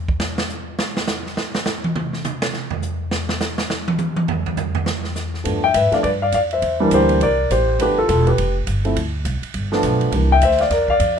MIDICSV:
0, 0, Header, 1, 5, 480
1, 0, Start_track
1, 0, Tempo, 291829
1, 1298, Time_signature, 4, 2, 24, 8
1, 18407, End_track
2, 0, Start_track
2, 0, Title_t, "Grand piano"
2, 0, Program_c, 0, 0
2, 8945, Note_on_c, 0, 53, 54
2, 8958, Note_on_c, 0, 57, 53
2, 8962, Note_on_c, 0, 59, 51
2, 8980, Note_on_c, 0, 62, 62
2, 9224, Note_off_c, 0, 53, 0
2, 9230, Note_off_c, 0, 57, 0
2, 9232, Note_off_c, 0, 59, 0
2, 9241, Note_off_c, 0, 62, 0
2, 9274, Note_on_c, 0, 79, 101
2, 9294, Note_on_c, 0, 76, 77
2, 9425, Note_off_c, 0, 76, 0
2, 9449, Note_on_c, 0, 76, 93
2, 9465, Note_off_c, 0, 79, 0
2, 9483, Note_on_c, 0, 71, 73
2, 9729, Note_on_c, 0, 53, 62
2, 9734, Note_on_c, 0, 57, 54
2, 9742, Note_on_c, 0, 59, 53
2, 9743, Note_off_c, 0, 71, 0
2, 9754, Note_off_c, 0, 76, 0
2, 9755, Note_on_c, 0, 62, 59
2, 9757, Note_on_c, 0, 77, 79
2, 9773, Note_on_c, 0, 74, 70
2, 9840, Note_off_c, 0, 77, 0
2, 9853, Note_off_c, 0, 74, 0
2, 9908, Note_off_c, 0, 53, 0
2, 9911, Note_off_c, 0, 57, 0
2, 9915, Note_off_c, 0, 59, 0
2, 9920, Note_on_c, 0, 74, 90
2, 9921, Note_off_c, 0, 62, 0
2, 9948, Note_on_c, 0, 71, 72
2, 10002, Note_off_c, 0, 74, 0
2, 10030, Note_off_c, 0, 71, 0
2, 10234, Note_on_c, 0, 77, 90
2, 10250, Note_on_c, 0, 74, 73
2, 10407, Note_off_c, 0, 77, 0
2, 10416, Note_off_c, 0, 74, 0
2, 10435, Note_on_c, 0, 77, 91
2, 10455, Note_on_c, 0, 74, 75
2, 10517, Note_off_c, 0, 77, 0
2, 10537, Note_off_c, 0, 74, 0
2, 10740, Note_on_c, 0, 76, 76
2, 10754, Note_on_c, 0, 72, 65
2, 11189, Note_on_c, 0, 52, 81
2, 11189, Note_on_c, 0, 55, 74
2, 11202, Note_on_c, 0, 58, 74
2, 11205, Note_on_c, 0, 62, 86
2, 11356, Note_off_c, 0, 72, 0
2, 11414, Note_off_c, 0, 76, 0
2, 11414, Note_on_c, 0, 72, 89
2, 11429, Note_on_c, 0, 67, 72
2, 11822, Note_off_c, 0, 52, 0
2, 11822, Note_off_c, 0, 55, 0
2, 11829, Note_off_c, 0, 58, 0
2, 11830, Note_off_c, 0, 62, 0
2, 11853, Note_off_c, 0, 67, 0
2, 11889, Note_on_c, 0, 74, 85
2, 11892, Note_off_c, 0, 72, 0
2, 11895, Note_on_c, 0, 70, 71
2, 12323, Note_off_c, 0, 74, 0
2, 12326, Note_off_c, 0, 70, 0
2, 12358, Note_on_c, 0, 72, 83
2, 12367, Note_on_c, 0, 67, 62
2, 12798, Note_off_c, 0, 72, 0
2, 12802, Note_off_c, 0, 67, 0
2, 12823, Note_on_c, 0, 53, 51
2, 12830, Note_on_c, 0, 57, 51
2, 12844, Note_on_c, 0, 71, 84
2, 12850, Note_on_c, 0, 62, 64
2, 12851, Note_on_c, 0, 59, 49
2, 12869, Note_on_c, 0, 67, 72
2, 13086, Note_off_c, 0, 53, 0
2, 13089, Note_off_c, 0, 57, 0
2, 13100, Note_off_c, 0, 59, 0
2, 13100, Note_off_c, 0, 62, 0
2, 13119, Note_off_c, 0, 67, 0
2, 13133, Note_on_c, 0, 69, 87
2, 13134, Note_off_c, 0, 71, 0
2, 13147, Note_on_c, 0, 65, 68
2, 13274, Note_off_c, 0, 69, 0
2, 13299, Note_on_c, 0, 69, 86
2, 13302, Note_off_c, 0, 65, 0
2, 13327, Note_on_c, 0, 65, 67
2, 13588, Note_off_c, 0, 65, 0
2, 13599, Note_on_c, 0, 71, 73
2, 13602, Note_off_c, 0, 69, 0
2, 13625, Note_on_c, 0, 67, 59
2, 14044, Note_off_c, 0, 71, 0
2, 14058, Note_off_c, 0, 67, 0
2, 14552, Note_on_c, 0, 57, 55
2, 14554, Note_on_c, 0, 53, 58
2, 14559, Note_on_c, 0, 60, 50
2, 14573, Note_on_c, 0, 64, 60
2, 14723, Note_off_c, 0, 57, 0
2, 14724, Note_off_c, 0, 53, 0
2, 14727, Note_off_c, 0, 60, 0
2, 14734, Note_off_c, 0, 64, 0
2, 15983, Note_on_c, 0, 53, 74
2, 15992, Note_on_c, 0, 57, 72
2, 15998, Note_on_c, 0, 59, 72
2, 16011, Note_on_c, 0, 62, 82
2, 16620, Note_off_c, 0, 53, 0
2, 16624, Note_off_c, 0, 57, 0
2, 16627, Note_off_c, 0, 59, 0
2, 16633, Note_off_c, 0, 62, 0
2, 16669, Note_on_c, 0, 52, 56
2, 16671, Note_on_c, 0, 55, 54
2, 16674, Note_on_c, 0, 58, 50
2, 16684, Note_on_c, 0, 62, 54
2, 16929, Note_off_c, 0, 52, 0
2, 16930, Note_off_c, 0, 55, 0
2, 16931, Note_off_c, 0, 58, 0
2, 16936, Note_off_c, 0, 62, 0
2, 16979, Note_on_c, 0, 79, 101
2, 17000, Note_on_c, 0, 76, 80
2, 17132, Note_off_c, 0, 76, 0
2, 17157, Note_on_c, 0, 76, 102
2, 17160, Note_off_c, 0, 79, 0
2, 17187, Note_on_c, 0, 72, 77
2, 17422, Note_off_c, 0, 76, 0
2, 17436, Note_on_c, 0, 77, 83
2, 17438, Note_off_c, 0, 72, 0
2, 17454, Note_on_c, 0, 74, 76
2, 17595, Note_off_c, 0, 74, 0
2, 17610, Note_off_c, 0, 77, 0
2, 17620, Note_on_c, 0, 74, 77
2, 17646, Note_on_c, 0, 70, 71
2, 17906, Note_off_c, 0, 70, 0
2, 17920, Note_off_c, 0, 74, 0
2, 17927, Note_on_c, 0, 77, 101
2, 17945, Note_on_c, 0, 74, 80
2, 18376, Note_off_c, 0, 74, 0
2, 18407, Note_off_c, 0, 77, 0
2, 18407, End_track
3, 0, Start_track
3, 0, Title_t, "Upright bass"
3, 0, Program_c, 1, 32
3, 8969, Note_on_c, 1, 43, 74
3, 9435, Note_off_c, 1, 43, 0
3, 9445, Note_on_c, 1, 44, 90
3, 9716, Note_off_c, 1, 44, 0
3, 9930, Note_on_c, 1, 43, 84
3, 10396, Note_off_c, 1, 43, 0
3, 10406, Note_on_c, 1, 41, 82
3, 10878, Note_off_c, 1, 41, 0
3, 10890, Note_on_c, 1, 40, 84
3, 11361, Note_off_c, 1, 40, 0
3, 11375, Note_on_c, 1, 38, 85
3, 11839, Note_off_c, 1, 38, 0
3, 11849, Note_on_c, 1, 36, 84
3, 12321, Note_off_c, 1, 36, 0
3, 12344, Note_on_c, 1, 33, 91
3, 12805, Note_off_c, 1, 33, 0
3, 12815, Note_on_c, 1, 31, 76
3, 13285, Note_off_c, 1, 31, 0
3, 13305, Note_on_c, 1, 28, 94
3, 13770, Note_off_c, 1, 28, 0
3, 13787, Note_on_c, 1, 29, 79
3, 14251, Note_off_c, 1, 29, 0
3, 14260, Note_on_c, 1, 31, 83
3, 14728, Note_off_c, 1, 31, 0
3, 14740, Note_on_c, 1, 38, 84
3, 15204, Note_off_c, 1, 38, 0
3, 15214, Note_on_c, 1, 36, 88
3, 15490, Note_off_c, 1, 36, 0
3, 15693, Note_on_c, 1, 31, 82
3, 16159, Note_off_c, 1, 31, 0
3, 16168, Note_on_c, 1, 35, 94
3, 16632, Note_off_c, 1, 35, 0
3, 16642, Note_on_c, 1, 36, 83
3, 17118, Note_off_c, 1, 36, 0
3, 17130, Note_on_c, 1, 38, 82
3, 17594, Note_off_c, 1, 38, 0
3, 17604, Note_on_c, 1, 40, 82
3, 18078, Note_off_c, 1, 40, 0
3, 18088, Note_on_c, 1, 41, 83
3, 18407, Note_off_c, 1, 41, 0
3, 18407, End_track
4, 0, Start_track
4, 0, Title_t, "Muted upright bass strokes"
4, 9726, Note_on_c, 9, 29, 37
4, 9891, Note_off_c, 9, 29, 0
4, 15503, Note_on_c, 9, 29, 35
4, 15667, Note_off_c, 9, 29, 0
4, 18407, End_track
5, 0, Start_track
5, 0, Title_t, "Drums"
5, 140, Note_on_c, 9, 36, 81
5, 304, Note_off_c, 9, 36, 0
5, 326, Note_on_c, 9, 38, 97
5, 491, Note_off_c, 9, 38, 0
5, 626, Note_on_c, 9, 38, 105
5, 790, Note_off_c, 9, 38, 0
5, 813, Note_on_c, 9, 44, 57
5, 977, Note_off_c, 9, 44, 0
5, 1293, Note_on_c, 9, 38, 112
5, 1458, Note_off_c, 9, 38, 0
5, 1591, Note_on_c, 9, 38, 102
5, 1756, Note_off_c, 9, 38, 0
5, 1765, Note_on_c, 9, 44, 62
5, 1768, Note_on_c, 9, 38, 99
5, 1930, Note_off_c, 9, 44, 0
5, 1933, Note_off_c, 9, 38, 0
5, 2074, Note_on_c, 9, 38, 41
5, 2239, Note_off_c, 9, 38, 0
5, 2257, Note_on_c, 9, 38, 94
5, 2421, Note_off_c, 9, 38, 0
5, 2543, Note_on_c, 9, 38, 110
5, 2707, Note_off_c, 9, 38, 0
5, 2724, Note_on_c, 9, 44, 56
5, 2727, Note_on_c, 9, 38, 101
5, 2888, Note_off_c, 9, 44, 0
5, 2891, Note_off_c, 9, 38, 0
5, 3030, Note_on_c, 9, 48, 93
5, 3194, Note_off_c, 9, 48, 0
5, 3217, Note_on_c, 9, 47, 102
5, 3382, Note_off_c, 9, 47, 0
5, 3508, Note_on_c, 9, 38, 50
5, 3673, Note_off_c, 9, 38, 0
5, 3692, Note_on_c, 9, 44, 62
5, 3696, Note_on_c, 9, 47, 100
5, 3857, Note_off_c, 9, 44, 0
5, 3860, Note_off_c, 9, 47, 0
5, 3981, Note_on_c, 9, 38, 109
5, 4145, Note_off_c, 9, 38, 0
5, 4167, Note_on_c, 9, 38, 53
5, 4332, Note_off_c, 9, 38, 0
5, 4449, Note_on_c, 9, 43, 97
5, 4614, Note_off_c, 9, 43, 0
5, 4644, Note_on_c, 9, 44, 56
5, 4809, Note_off_c, 9, 44, 0
5, 5121, Note_on_c, 9, 38, 106
5, 5286, Note_off_c, 9, 38, 0
5, 5412, Note_on_c, 9, 38, 101
5, 5576, Note_off_c, 9, 38, 0
5, 5601, Note_on_c, 9, 44, 62
5, 5604, Note_on_c, 9, 38, 100
5, 5765, Note_off_c, 9, 44, 0
5, 5768, Note_off_c, 9, 38, 0
5, 5890, Note_on_c, 9, 38, 104
5, 6054, Note_off_c, 9, 38, 0
5, 6087, Note_on_c, 9, 38, 97
5, 6252, Note_off_c, 9, 38, 0
5, 6378, Note_on_c, 9, 48, 105
5, 6542, Note_off_c, 9, 48, 0
5, 6554, Note_on_c, 9, 44, 52
5, 6557, Note_on_c, 9, 48, 100
5, 6719, Note_off_c, 9, 44, 0
5, 6722, Note_off_c, 9, 48, 0
5, 6851, Note_on_c, 9, 48, 111
5, 7015, Note_off_c, 9, 48, 0
5, 7044, Note_on_c, 9, 43, 114
5, 7209, Note_off_c, 9, 43, 0
5, 7340, Note_on_c, 9, 43, 98
5, 7505, Note_off_c, 9, 43, 0
5, 7518, Note_on_c, 9, 44, 62
5, 7521, Note_on_c, 9, 43, 103
5, 7682, Note_off_c, 9, 44, 0
5, 7685, Note_off_c, 9, 43, 0
5, 7809, Note_on_c, 9, 43, 102
5, 7973, Note_off_c, 9, 43, 0
5, 7997, Note_on_c, 9, 38, 99
5, 8161, Note_off_c, 9, 38, 0
5, 8290, Note_on_c, 9, 38, 45
5, 8454, Note_off_c, 9, 38, 0
5, 8482, Note_on_c, 9, 44, 59
5, 8485, Note_on_c, 9, 38, 52
5, 8646, Note_off_c, 9, 44, 0
5, 8650, Note_off_c, 9, 38, 0
5, 8785, Note_on_c, 9, 38, 36
5, 8949, Note_off_c, 9, 38, 0
5, 8968, Note_on_c, 9, 36, 23
5, 8969, Note_on_c, 9, 51, 63
5, 9133, Note_off_c, 9, 36, 0
5, 9133, Note_off_c, 9, 51, 0
5, 9443, Note_on_c, 9, 44, 54
5, 9443, Note_on_c, 9, 51, 72
5, 9450, Note_on_c, 9, 36, 20
5, 9608, Note_off_c, 9, 44, 0
5, 9608, Note_off_c, 9, 51, 0
5, 9615, Note_off_c, 9, 36, 0
5, 9741, Note_on_c, 9, 51, 41
5, 9744, Note_on_c, 9, 38, 32
5, 9905, Note_off_c, 9, 51, 0
5, 9909, Note_off_c, 9, 38, 0
5, 9931, Note_on_c, 9, 51, 52
5, 9933, Note_on_c, 9, 36, 23
5, 10095, Note_off_c, 9, 51, 0
5, 10097, Note_off_c, 9, 36, 0
5, 10400, Note_on_c, 9, 44, 53
5, 10400, Note_on_c, 9, 51, 59
5, 10412, Note_on_c, 9, 36, 22
5, 10565, Note_off_c, 9, 44, 0
5, 10565, Note_off_c, 9, 51, 0
5, 10576, Note_off_c, 9, 36, 0
5, 10703, Note_on_c, 9, 51, 38
5, 10867, Note_off_c, 9, 51, 0
5, 10891, Note_on_c, 9, 51, 60
5, 10895, Note_on_c, 9, 36, 23
5, 11056, Note_off_c, 9, 51, 0
5, 11059, Note_off_c, 9, 36, 0
5, 11367, Note_on_c, 9, 44, 61
5, 11367, Note_on_c, 9, 51, 72
5, 11377, Note_on_c, 9, 36, 17
5, 11531, Note_off_c, 9, 44, 0
5, 11531, Note_off_c, 9, 51, 0
5, 11541, Note_off_c, 9, 36, 0
5, 11661, Note_on_c, 9, 51, 46
5, 11826, Note_off_c, 9, 51, 0
5, 11858, Note_on_c, 9, 51, 56
5, 11862, Note_on_c, 9, 36, 17
5, 12023, Note_off_c, 9, 51, 0
5, 12026, Note_off_c, 9, 36, 0
5, 12345, Note_on_c, 9, 36, 20
5, 12345, Note_on_c, 9, 44, 56
5, 12345, Note_on_c, 9, 51, 64
5, 12510, Note_off_c, 9, 36, 0
5, 12510, Note_off_c, 9, 44, 0
5, 12510, Note_off_c, 9, 51, 0
5, 12822, Note_on_c, 9, 51, 67
5, 12825, Note_on_c, 9, 36, 26
5, 12986, Note_off_c, 9, 51, 0
5, 12990, Note_off_c, 9, 36, 0
5, 13303, Note_on_c, 9, 44, 46
5, 13303, Note_on_c, 9, 51, 69
5, 13306, Note_on_c, 9, 36, 22
5, 13467, Note_off_c, 9, 44, 0
5, 13467, Note_off_c, 9, 51, 0
5, 13470, Note_off_c, 9, 36, 0
5, 13600, Note_on_c, 9, 51, 40
5, 13764, Note_off_c, 9, 51, 0
5, 13785, Note_on_c, 9, 51, 60
5, 13786, Note_on_c, 9, 36, 23
5, 13950, Note_off_c, 9, 36, 0
5, 13950, Note_off_c, 9, 51, 0
5, 14259, Note_on_c, 9, 44, 53
5, 14259, Note_on_c, 9, 51, 64
5, 14264, Note_on_c, 9, 36, 19
5, 14423, Note_off_c, 9, 44, 0
5, 14423, Note_off_c, 9, 51, 0
5, 14428, Note_off_c, 9, 36, 0
5, 14552, Note_on_c, 9, 51, 41
5, 14717, Note_off_c, 9, 51, 0
5, 14742, Note_on_c, 9, 36, 23
5, 14745, Note_on_c, 9, 51, 62
5, 14907, Note_off_c, 9, 36, 0
5, 14910, Note_off_c, 9, 51, 0
5, 15216, Note_on_c, 9, 44, 61
5, 15216, Note_on_c, 9, 51, 59
5, 15219, Note_on_c, 9, 36, 22
5, 15381, Note_off_c, 9, 44, 0
5, 15381, Note_off_c, 9, 51, 0
5, 15383, Note_off_c, 9, 36, 0
5, 15511, Note_on_c, 9, 51, 46
5, 15676, Note_off_c, 9, 51, 0
5, 15691, Note_on_c, 9, 51, 57
5, 15696, Note_on_c, 9, 36, 21
5, 15855, Note_off_c, 9, 51, 0
5, 15861, Note_off_c, 9, 36, 0
5, 15992, Note_on_c, 9, 38, 60
5, 16156, Note_off_c, 9, 38, 0
5, 16166, Note_on_c, 9, 44, 52
5, 16166, Note_on_c, 9, 51, 65
5, 16173, Note_on_c, 9, 36, 22
5, 16330, Note_off_c, 9, 44, 0
5, 16330, Note_off_c, 9, 51, 0
5, 16337, Note_off_c, 9, 36, 0
5, 16462, Note_on_c, 9, 51, 40
5, 16627, Note_off_c, 9, 51, 0
5, 16651, Note_on_c, 9, 51, 65
5, 16652, Note_on_c, 9, 36, 23
5, 16815, Note_off_c, 9, 51, 0
5, 16816, Note_off_c, 9, 36, 0
5, 17130, Note_on_c, 9, 36, 18
5, 17130, Note_on_c, 9, 44, 57
5, 17130, Note_on_c, 9, 51, 65
5, 17289, Note_on_c, 9, 38, 30
5, 17294, Note_off_c, 9, 36, 0
5, 17295, Note_off_c, 9, 44, 0
5, 17295, Note_off_c, 9, 51, 0
5, 17409, Note_on_c, 9, 51, 48
5, 17451, Note_off_c, 9, 38, 0
5, 17451, Note_on_c, 9, 38, 41
5, 17573, Note_off_c, 9, 51, 0
5, 17609, Note_on_c, 9, 36, 23
5, 17609, Note_on_c, 9, 51, 60
5, 17613, Note_off_c, 9, 38, 0
5, 17613, Note_on_c, 9, 38, 34
5, 17773, Note_off_c, 9, 36, 0
5, 17774, Note_off_c, 9, 51, 0
5, 17777, Note_off_c, 9, 38, 0
5, 17901, Note_on_c, 9, 36, 51
5, 18065, Note_off_c, 9, 36, 0
5, 18089, Note_on_c, 9, 36, 20
5, 18089, Note_on_c, 9, 44, 51
5, 18089, Note_on_c, 9, 51, 69
5, 18253, Note_off_c, 9, 36, 0
5, 18254, Note_off_c, 9, 44, 0
5, 18254, Note_off_c, 9, 51, 0
5, 18407, End_track
0, 0, End_of_file